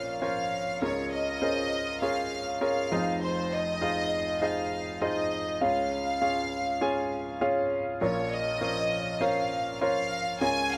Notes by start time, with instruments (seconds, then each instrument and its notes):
Already playing: grand piano A#1 A#2 C#4 F4 A#4 C5 C#5, violin section F5
0.22 grand piano C#4 F4 A#4 C5 C#5, violin section F5
0.82 grand piano C#2 C#3 C#4 F4 G#4 A#4 C#5, violin section C#5
1.12 violin section D#5
1.41 grand piano C#4 F4 G#4 A#4 C5
2.02 grand piano C#4 F4 G#4 A#4 C#5, violin section F5
2.61 grand piano C#4 F4 G#4 A#4 C#5, violin section F5
2.92 grand piano F1 F2 D#4 F4 G#4 C5 D#5
3.22 violin section C5
3.52 violin section D#5
3.81 grand piano D#4 F4 G#4 C5 F5
4.42 grand piano D#4 F4 G#4 C5 D#5, violin section F5
5.02 grand piano D#4 F4 G#4 C5 D#5, violin section D#5
5.61 grand piano C#2 C#3 C#4 F4 G#4 C#5 F5, violin section F5
6.21 grand piano C#4 F4 G#4 C#5 F5
6.81 grand piano C#4 F4 G#4 C#5 G#5
7.41 grand piano C#4 F4 G#4 C#5 F5
8.01 grand piano A#1 A#2 C#4 F4 A#4 C#5, violin section C#5
8.32 violin section D#5
8.61 grand piano C#4 F4 A#4 C5 C#5
9.21 grand piano C#4 F4 A#4 C5 C#5, violin section F5
9.81 grand piano C#4 F4 A#4 C5 C#5, violin section F5
10.41 grand piano C#2 C#3 C#4 F4 G#4 A#4 C#5, violin section G#5
10.73 violin section F5